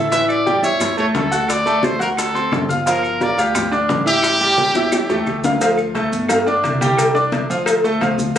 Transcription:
Already playing: A1
0.11 E3 E4 E5, high bongo, high conga, maracas
0.28 D5, high conga, claves, maracas
0.46 G3 G4 G5, high bongo, high conga, maracas
0.62 E2 E4 C#5 E5 E6, high conga, maracas
0.80 high bongo, high conga, low conga, claves, maracas
0.97 A3 A4 C#5 A5, high conga, maracas
1.15 D2 A4, high bongo, low bongo, high conga, maracas
1.31 F#4 F#5 F#6, maracas
1.49 D5, high bongo, high conga, claves, maracas
1.66 A3 A4 A5, high bongo, high conga, maracas
1.83 C5, high bongo, high conga, maracas
1.99 D2 F#4 A#4 F#5 F#6, high conga, maracas
2.17 A4, high bongo, high conga, claves, maracas
2.34 C4 C5 C6, high bongo, high conga, maracas
2.52 G1, high bongo, low bongo, high conga, claves, maracas
2.69 F4 F5 F6, high bongo, high conga, maracas
2.86 F3 F4 A#4 F5, high bongo, high conga, maracas
3.03 high conga, claves, maracas
3.20 A#3 A#4 D5 A#5, high bongo, high conga, maracas
3.37 D2 F4 G4 F5 F6, high conga, maracas
3.55 high bongo, high conga, low conga, claves, maracas
3.72 D4 D5 D6, high conga, maracas
3.89 A1, high bongo, low bongo, high conga, maracas
4.06 E4 G4 E5 E6, maracas
4.23 high bongo, high conga, claves, maracas
4.41 G3 G4 G5, high bongo, high conga, maracas
4.58 high bongo, high conga, maracas
4.74 E2 E4 E5 E6, high bongo, high conga, maracas
4.92 high bongo, high conga, claves, maracas
5.09 E2 A3 A4 A5, high bongo, high conga, maracas
5.26 D2, high conga, claves, maracas
5.44 F4 F5 F6, low bongo, high conga, maracas
5.61 F3 F4 F5, cowbell, high conga, maracas
5.78 high conga, claves, maracas
5.95 A3 A4 A5, cowbell, high conga, maracas
6.12 G1, high conga, maracas
6.29 F4 F5 F6, cowbell, high conga, low conga, claves, maracas
6.47 D4 D5 D6, high conga, maracas
6.63 C2, cowbell, high conga, maracas
6.81 G3 G4 G5, cowbell, high conga, maracas
6.97 cowbell, claves, maracas
7.15 D4 D5 D6, high conga, maracas
7.32 cowbell, high conga, maracas
7.50 D2 F3 F4 F5, maracas
7.66 cowbell, high conga, claves, maracas
7.84 A3 A4 A5, high conga, maracas
8.01 D2 F3 F4 F5, cowbell, high conga, claves, maracas
8.18 high conga, maracas
8.35 high conga

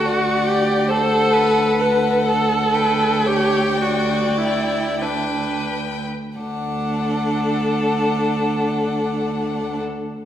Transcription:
Already playing: F#4
0.05 D2 D5 F#5
0.47 G4
0.88 A4 C5 F#5
1.33 B4
1.79 A4 B4 F#5
2.27 A4
2.75 B4 G5
3.26 G4 C#5
3.81 F#4 D5
4.38 E4
5.00 D4 B4 G5
6.38 D2 D4 A4 F#5

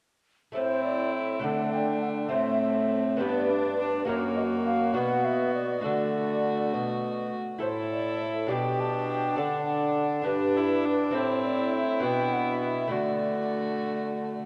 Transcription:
0.52 A2 A3 E4 A4 C5
0.57 C4 E4
0.84 D5
1.14 E5
1.39 A3 D4 A4 F#5
1.44 D3 A3 D4
1.73 G5
2.02 F#5
2.28 A2 A3 C4 C5 E5
2.32 A2 A3 C4
2.62 E5
3.17 G2 B3 D4 G4
3.21 G2 B3 D4 B4
3.50 D4
3.79 D4
4.05 F#2 A#3 F#4 A#4 C#5
4.36 D#5
4.66 F5
4.93 B2 B3 D4 F#4 B4 F#5
5.25 E5
5.55 D5
5.81 D3 A3 D4 F#4 A4 D5
5.85 D3
6.74 B2
7.59 A2 E4 A4 C5
7.63 E4 A4
7.92 D5
8.21 E5
8.46 B2 D4 G4 D5
8.51 G5
8.80 A5
9.09 G5
9.36 D3 D4 A4 D5 F#5
9.67 F#5
10.22 D4 G4 B4
10.26 G2 D4
10.57 E4
10.85 D4
11.11 A2 C4 E4 A4 C5
11.44 D5
11.74 E5
12.00 B2 B3 D4 F#4
12.04 G5
12.33 F#5
12.64 E5
12.87 A3 F#4
12.92 D3 A3 F#4 D5

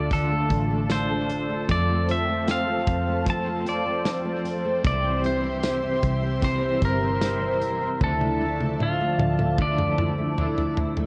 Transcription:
Already playing: D2 D3 A3 D4 F4 A4 D5 A5
0.10 D3 A3 D4 F4 A4, kick, closed hi-hat
0.31 A3
0.50 A1 D4, kick, closed hi-hat
0.70 A3
0.89 A3 D4 F4 C5, snare, closed hi-hat, tambourine
0.94 A4
1.10 A3
1.29 D4, closed hi-hat
1.49 A3
1.67 F2 F3 A3 F4 C5 A5, kick, closed hi-hat
1.71 C4 F4 A4 D5
1.89 A3
2.08 C4 E5, closed hi-hat
2.28 A3
2.47 C4 F5, snare, closed hi-hat, tambourine
2.67 A3
2.87 F2 C4, kick, closed hi-hat
3.07 A3
3.25 F2 F3 A3 C4, kick, closed hi-hat
3.30 F4 A4 A5
3.46 A3
3.66 C4 D5, closed hi-hat
3.86 A3
4.05 C4, snare, closed hi-hat, tambourine
4.25 A3
4.44 C4, closed hi-hat
4.65 A3
4.83 C2 C3 E3 G3 G4 D5 E5 C6, kick, closed hi-hat
4.88 C4 E4 C5
5.03 C4
5.23 E4 C5, closed hi-hat
5.43 C4
5.63 E4, snare, closed hi-hat, tambourine
5.83 C4
6.02 C2 E4, kick, closed hi-hat
6.22 C4
6.42 C3 E3 G3 C4 E4 C5, kick, closed hi-hat
6.61 C4
6.81 G1 E4 A#4, kick, closed hi-hat
7.01 C4
7.21 G3 C4 E4, snare, closed hi-hat, tambourine
7.26 C5
7.41 C4
7.61 E4, closed hi-hat
7.81 C4
8.00 D2 D3 F3 A3 D4 E4 A4 D5 A5, kick, high tom
8.21 A3, high tom
8.40 D4 E4 A4
8.44 A3
8.60 A3, high tom
8.80 F4, mid tom
9.00 A3
9.19 D2, mid tom
9.39 A3, mid tom
9.58 D3 F3 A3 D4 E4 A4 D5, kick
9.79 A3, mid tom
9.98 E4, mid tom
10.18 A3
10.37 A3 D4 E4, floor tom
10.42 A4
10.57 A3, floor tom
10.77 E4, floor tom
10.97 A3, floor tom

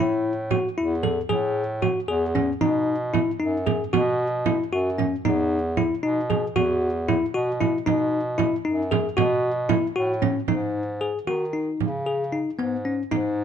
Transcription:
0.00 A2 E4
0.51 F#4, frame drum
0.78 E2 E4
1.03 A4, frame drum
1.29 A2 G#4, frame drum
1.82 F#4, frame drum
2.08 E2 G#4
2.35 C#4, frame drum
2.61 B2 D#4, frame drum
3.14 E4, frame drum
3.40 F#2 D#4
3.66 G#4, frame drum
3.93 B2 F#4, frame drum
4.46 E4, frame drum
4.72 F#2 F#4
4.98 C#4, frame drum
5.24 E2 D#4, frame drum
5.77 E4, frame drum
6.03 B2 D#4
6.30 G#4, frame drum
6.56 E2 F#4, frame drum
7.08 E4, frame drum
7.34 B2 F#4
7.61 E4, frame drum
7.86 B2 D#4, frame drum
8.38 E4, frame drum
8.65 F#2 D#4
8.91 G#4, frame drum
9.17 B2 F#4, frame drum
9.69 E4, frame drum
9.96 A2 F#4
10.22 C#4, frame drum
10.48 G#2 D#4, frame drum
11.01 G#4
11.27 D#3 F#4, frame drum
11.53 D#4
11.80 C#3, frame drum
12.06 G#4
12.33 D#4
12.59 G#2 B3, frame drum
12.85 C#4
13.11 G#2 D#4, frame drum

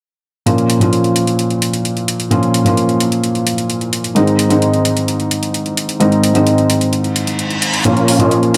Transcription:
0.46 A#2 F3 A#3 C#4 F4, closed hi-hat
0.58 closed hi-hat
0.70 closed hi-hat
0.80 A#2 F3 A#3 C#4 F4, closed hi-hat
0.93 closed hi-hat
1.04 closed hi-hat
1.16 closed hi-hat
1.27 closed hi-hat
1.39 closed hi-hat
1.50 closed hi-hat
1.62 closed hi-hat
1.73 closed hi-hat
1.85 closed hi-hat
1.97 closed hi-hat
2.08 closed hi-hat
2.20 closed hi-hat
2.31 A#2 F3 A#3 C#4 F4, closed hi-hat
2.43 closed hi-hat
2.54 closed hi-hat
2.65 A#2 F3 A#3 C#4 F4, closed hi-hat
2.77 closed hi-hat
2.89 closed hi-hat
3.00 closed hi-hat
3.12 closed hi-hat
3.24 closed hi-hat
3.35 closed hi-hat
3.47 closed hi-hat
3.58 closed hi-hat
3.70 closed hi-hat
3.81 closed hi-hat
3.93 closed hi-hat
4.04 closed hi-hat
4.15 G#2 D#3 G#3 C4 D#4, closed hi-hat
4.27 closed hi-hat
4.39 closed hi-hat
4.49 G#2 D#3 G#3 C4 D#4, closed hi-hat
4.62 closed hi-hat
4.74 closed hi-hat
4.85 closed hi-hat
4.97 closed hi-hat
5.08 closed hi-hat
5.20 closed hi-hat
5.31 closed hi-hat
5.43 closed hi-hat
5.54 closed hi-hat
5.66 closed hi-hat
5.77 closed hi-hat
5.89 closed hi-hat
6.00 G#2 D#3 G#3 C4 D#4, closed hi-hat
6.12 closed hi-hat
6.24 closed hi-hat
6.34 G#2 D#3 G#3 C4 D#4, closed hi-hat
6.47 closed hi-hat
6.58 closed hi-hat
6.70 closed hi-hat
6.81 closed hi-hat
6.93 closed hi-hat, reverse cymbal
7.04 closed hi-hat
7.16 closed hi-hat
7.27 closed hi-hat
7.39 closed hi-hat
7.50 closed hi-hat
7.62 closed hi-hat
7.74 closed hi-hat
7.85 A#2 F3 A#3 C#4 F4 C#5 F5, closed hi-hat, riser
7.97 closed hi-hat
8.08 open hi-hat
8.19 A#2 F3 A#3 C#4 F4 C#5 D#5, closed hi-hat
8.31 closed hi-hat
8.43 closed hi-hat

